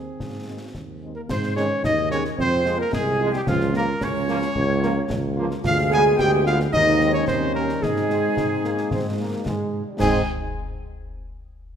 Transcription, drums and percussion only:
0.20 concert bass drum, snare
0.74 concert bass drum, snare
1.29 concert bass drum, snare, crash
1.43 snare
1.57 snare
1.84 concert bass drum, snare
2.11 snare
2.25 snare
2.38 concert bass drum
2.66 snare
2.93 concert bass drum, snare
3.33 snare
3.47 concert bass drum, snare
3.60 snare
3.74 snare
4.01 concert bass drum, snare
4.28 snare
4.42 snare
4.55 concert bass drum
4.83 snare
5.10 concert bass drum, snare
5.51 snare
5.64 concert bass drum, snare, crash
5.78 snare
5.92 snare
6.19 concert bass drum, snare
6.46 snare
6.60 snare
6.73 concert bass drum
7.00 snare
7.28 concert bass drum, snare
7.69 snare
7.83 concert bass drum, snare
7.96 snare
8.10 snare
8.37 concert bass drum, snare
8.64 snare
8.78 snare
8.91 concert bass drum, snare
9.46 concert bass drum, snare
10.00 concert bass drum, snare, crash

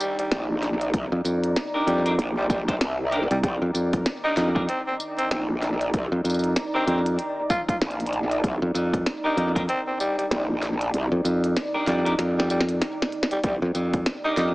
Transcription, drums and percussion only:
0.00 tambourine
0.19 closed hi-hat
0.32 snare, closed hi-hat
0.63 snare, closed hi-hat
0.81 closed hi-hat
0.94 kick, closed hi-hat
1.25 closed hi-hat, tambourine
1.44 closed hi-hat
1.56 snare, closed hi-hat
1.88 closed hi-hat
2.06 closed hi-hat
2.19 closed hi-hat
2.50 kick, closed hi-hat, tambourine
2.68 kick, closed hi-hat
2.81 snare, closed hi-hat
3.12 closed hi-hat
3.31 closed hi-hat
3.43 kick, closed hi-hat
3.75 closed hi-hat, tambourine
3.93 kick, closed hi-hat
4.06 snare, closed hi-hat
4.37 snare, closed hi-hat
4.56 kick
4.69 closed hi-hat
5.00 tambourine
5.19 closed hi-hat
5.31 snare, closed hi-hat
5.63 snare, closed hi-hat
5.81 closed hi-hat
5.94 kick, closed hi-hat
6.25 closed hi-hat, tambourine
6.30 tambourine
6.34 tambourine
6.39 tambourine
6.44 closed hi-hat
6.56 snare, closed hi-hat
6.88 closed hi-hat
7.06 closed hi-hat
7.19 closed hi-hat
7.50 kick, tambourine
7.69 kick, closed hi-hat
7.82 snare, closed hi-hat
7.91 closed hi-hat
8.00 closed hi-hat
8.06 closed hi-hat
8.13 closed hi-hat
8.31 closed hi-hat
8.44 kick, closed hi-hat
8.75 closed hi-hat, tambourine
8.94 kick, closed hi-hat
9.06 snare, closed hi-hat
9.38 closed hi-hat
9.56 kick, closed hi-hat
9.69 closed hi-hat
10.00 tambourine
10.19 closed hi-hat
10.31 snare, closed hi-hat
10.63 snare, closed hi-hat
10.81 closed hi-hat
10.94 closed hi-hat
11.25 closed hi-hat, tambourine
11.44 closed hi-hat
11.57 snare, closed hi-hat
11.88 snare, closed hi-hat
12.06 closed hi-hat
12.19 snare, closed hi-hat
12.40 snare
12.50 closed hi-hat, tambourine
12.61 snare
12.69 closed hi-hat
12.82 snare, closed hi-hat
13.02 snare
13.12 closed hi-hat
13.23 snare
13.31 closed hi-hat
13.44 kick, closed hi-hat
13.75 closed hi-hat, tambourine
13.94 kick, closed hi-hat
14.06 snare, closed hi-hat
14.37 snare, closed hi-hat

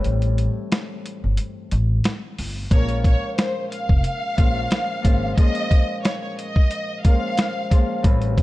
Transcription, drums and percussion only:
0.04 closed hi-hat
0.22 closed hi-hat
0.38 closed hi-hat
0.72 snare, closed hi-hat
1.06 closed hi-hat
1.37 closed hi-hat
1.72 closed hi-hat
2.04 snare, closed hi-hat
2.39 open hi-hat
2.71 kick, closed hi-hat
2.89 closed hi-hat
3.04 kick, closed hi-hat
3.38 snare, closed hi-hat
3.72 closed hi-hat
3.89 kick
4.04 closed hi-hat
4.38 kick, closed hi-hat
4.71 snare, closed hi-hat
5.05 kick, closed hi-hat
5.38 kick, closed hi-hat
5.55 closed hi-hat
5.71 kick, closed hi-hat
6.05 snare, closed hi-hat
6.39 closed hi-hat
6.56 kick
6.71 closed hi-hat
7.05 kick, closed hi-hat
7.37 snare, closed hi-hat
7.71 kick, closed hi-hat
8.04 kick, closed hi-hat
8.22 closed hi-hat
8.38 kick, closed hi-hat

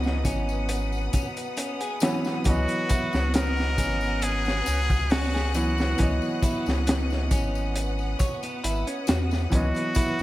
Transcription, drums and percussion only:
0.03 snare, tambourine
0.25 kick, closed hi-hat, tambourine
0.49 tambourine
0.69 closed hi-hat, tambourine
0.92 tambourine
1.13 kick, closed hi-hat, tambourine
1.37 closed hi-hat, tambourine
1.57 closed hi-hat, tambourine
1.81 closed hi-hat, tambourine
2.00 snare, closed hi-hat, tambourine
2.25 snare, tambourine
2.44 kick, closed hi-hat, tambourine
2.68 closed hi-hat, tambourine
2.89 kick, closed hi-hat, tambourine
3.13 snare, tambourine
3.34 snare, closed hi-hat, tambourine
3.57 snare, tambourine
3.78 kick, closed hi-hat, tambourine
4.01 tambourine
4.22 closed hi-hat, tambourine
4.45 snare, tambourine
4.66 closed hi-hat, tambourine
4.90 kick, tambourine
5.10 snare, open hi-hat, tambourine
5.33 snare, tambourine
5.54 closed hi-hat, tambourine
5.78 snare, tambourine
5.98 kick, closed hi-hat, tambourine
6.22 tambourine
6.42 kick, closed hi-hat, tambourine
6.66 snare, tambourine
6.87 snare, closed hi-hat, tambourine
7.10 snare, tambourine
7.31 kick, closed hi-hat, tambourine
7.55 tambourine
7.76 closed hi-hat, tambourine
7.99 tambourine
8.19 kick, closed hi-hat, tambourine
8.43 closed hi-hat, tambourine
8.64 closed hi-hat, tambourine
8.87 closed hi-hat, tambourine
9.07 snare, closed hi-hat, tambourine
9.31 snare, tambourine
9.52 kick, closed hi-hat, tambourine
9.75 closed hi-hat, tambourine
9.95 kick, closed hi-hat, tambourine
10.19 tambourine

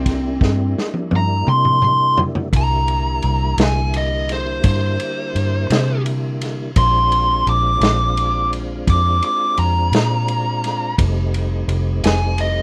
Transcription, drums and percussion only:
0.06 kick, snare, ride
0.41 kick, snare
0.78 snare
0.94 high tom
1.11 high tom
1.47 mid tom
1.65 mid tom
1.82 mid tom
2.17 floor tom
2.35 floor tom
2.53 kick, ride
2.88 ride
3.22 ride
3.58 snare, ride
3.94 ride
4.29 snare, ride
4.64 kick, ride
5.00 ride
5.36 ride
5.70 snare, ride
6.06 ride
6.41 snare, ride
6.76 kick, ride
7.12 ride
7.47 ride
7.81 snare, ride
8.17 ride
8.53 ride
8.87 kick, ride
9.22 ride
9.57 ride
9.93 snare, ride
10.28 ride
10.64 snare, ride
10.98 kick, ride
11.34 ride
11.69 ride
12.04 snare, ride
12.38 ride

